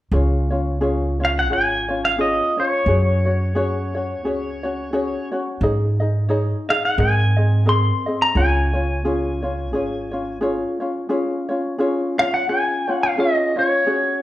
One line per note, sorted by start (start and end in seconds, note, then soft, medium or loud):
0.11 1.49 C#2 medium
0.11 0.51 C#4 medium
0.11 0.50 F4 medium
0.11 0.51 G#4 medium
0.11 0.49 C#5 medium
0.50 0.80 C#4 soft
0.50 0.80 F4 soft
0.50 0.81 C#5 medium
0.81 1.20 C#4 medium
0.81 1.20 F4 medium
0.81 1.19 G#4 medium
0.81 1.19 C#5 medium
1.20 1.49 C#4 soft
1.20 1.50 F4 soft
1.20 1.50 C#5 soft
1.25 1.30 F5 medium
1.39 1.52 F#5 medium
1.49 2.38 G#1 medium
1.49 1.88 C#4 soft
1.49 1.89 F4 medium
1.49 1.88 G#4 medium
1.49 1.87 C#5 medium
1.53 2.05 G#5 medium
1.88 2.17 C#4 soft
1.88 2.17 F4 medium
1.88 2.18 C#5 medium
2.05 2.19 F5 medium
2.18 2.57 C#4 medium
2.18 2.57 F4 medium
2.18 2.57 G#4 medium
2.18 2.56 C#5 medium
2.18 2.59 D#5 medium
2.58 2.87 C#4 soft
2.58 2.88 F4 soft
2.58 2.87 C#5 soft
2.58 5.29 C#5 medium
2.86 4.23 F#2 medium
2.86 3.26 C#4 medium
2.86 3.25 F#4 medium
2.86 3.26 G#4 medium
2.86 3.24 C#5 medium
3.25 3.54 C#4 soft
3.25 3.55 F#4 soft
3.25 3.55 C#5 soft
3.55 3.94 C#4 medium
3.55 3.94 F#4 medium
3.55 3.94 G#4 medium
3.55 3.94 C#5 medium
3.95 4.24 C#4 soft
3.95 4.25 F#4 soft
3.95 4.24 C#5 medium
4.23 5.12 C#2 loud
4.23 4.63 C#4 medium
4.23 4.63 F#4 medium
4.23 4.63 G#4 medium
4.27 4.62 C#5 medium
4.63 4.92 C#4 soft
4.63 4.92 F#4 soft
4.63 4.93 C#5 medium
4.93 5.31 C#4 medium
4.93 5.31 F#4 medium
4.93 5.31 G#4 medium
4.93 5.30 C#5 medium
5.32 5.62 C#4 soft
5.32 5.62 F#4 medium
5.32 5.61 C#5 medium
5.61 6.50 G#2 medium
5.61 6.01 D#4 medium
5.61 5.99 G#4 medium
5.61 6.00 C#5 medium
5.61 5.99 D#5 medium
6.00 6.28 D#4 soft
6.00 6.29 G#4 soft
6.00 6.29 D#5 medium
6.29 6.68 D#4 medium
6.29 6.68 G#4 medium
6.29 6.68 C#5 medium
6.29 6.68 D#5 medium
6.69 6.98 D#4 soft
6.69 6.98 G#4 soft
6.69 6.98 D#5 soft
6.69 6.85 F5 medium
6.85 7.00 F#5 medium
6.98 7.87 G#2 medium
6.98 7.37 C4 medium
6.98 7.36 G#4 medium
6.98 7.37 A#4 medium
6.98 7.35 D#5 medium
6.98 7.69 G#5 medium
7.36 7.65 C4 soft
7.36 7.65 G#4 soft
7.36 7.66 D#5 medium
7.66 8.05 C4 medium
7.66 8.05 G#4 medium
7.66 8.05 A#4 medium
7.66 8.05 D#5 medium
7.66 8.22 C6 medium
8.06 8.35 C4 soft
8.06 8.33 G#4 soft
8.06 8.36 D#5 medium
8.22 8.37 A#5 medium
8.35 9.73 C#2 medium
8.35 8.74 C#4 medium
8.35 8.73 F4 medium
8.35 8.74 G#4 medium
8.35 8.72 C#5 medium
8.35 10.38 G#5 medium
8.73 9.04 C#4 soft
8.73 9.04 F4 soft
8.73 9.04 C#5 medium
9.05 9.43 C#4 medium
9.05 9.42 F4 medium
9.05 9.43 G#4 medium
9.05 9.41 C#5 medium
9.42 9.72 C#4 soft
9.42 9.73 F4 soft
9.42 9.73 C#5 soft
9.73 10.62 G#1 medium
9.73 10.12 C#4 medium
9.73 10.12 F4 medium
9.73 10.11 G#4 medium
9.73 10.10 C#5 medium
10.11 10.40 C#4 soft
10.11 10.41 F4 medium
10.11 10.41 C#5 medium
10.41 10.80 C#4 medium
10.41 10.80 F4 medium
10.41 10.80 G#4 medium
10.41 10.79 C#5 medium
10.80 11.08 C#4 soft
10.80 11.09 F4 medium
10.80 11.09 C#5 medium
11.09 11.49 C#4 medium
11.09 11.49 F4 medium
11.09 11.48 G#4 medium
11.09 11.47 C#5 medium
11.49 11.78 C#4 soft
11.49 11.79 F4 soft
11.49 11.79 C#5 medium
11.78 12.18 C#4 medium
11.78 12.18 F4 medium
11.78 12.17 G#4 medium
11.78 12.17 C#5 medium
12.18 12.48 C#4 soft
12.18 12.48 F4 soft
12.18 12.48 C#5 soft
12.18 12.34 F5 medium
12.34 12.49 F#5 medium
12.49 12.87 C#4 medium
12.49 12.87 F4 medium
12.49 12.87 G#4 medium
12.49 12.87 C#5 medium
12.49 13.03 G#5 medium
12.88 13.17 C#4 soft
12.88 13.17 F4 medium
12.88 13.17 C#5 soft
13.03 13.18 F5 medium
13.18 13.56 C#4 medium
13.18 13.55 F4 medium
13.18 13.56 G#4 medium
13.18 13.55 C#5 medium
13.18 13.58 D#5 medium
13.56 13.86 C#4 soft
13.56 13.86 F4 soft
13.56 13.85 C#5 soft
13.56 14.22 C#5 medium
13.86 14.22 C#4 medium
13.86 14.22 F#4 medium
13.86 14.22 G#4 medium
13.86 14.22 C#5 medium